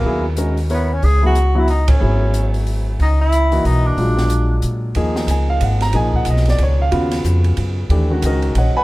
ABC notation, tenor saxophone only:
X:1
M:3/4
L:1/8
Q:"Swing" 1/4=183
K:C#dor
V:1 name="Tenor saxophone"
A, z3 B, C | G F2 E D C- | C3 z3 | D E3 D =D- |
=D4 z2 | [K:Ebm] z6 | z6 | z6 |
z6 |]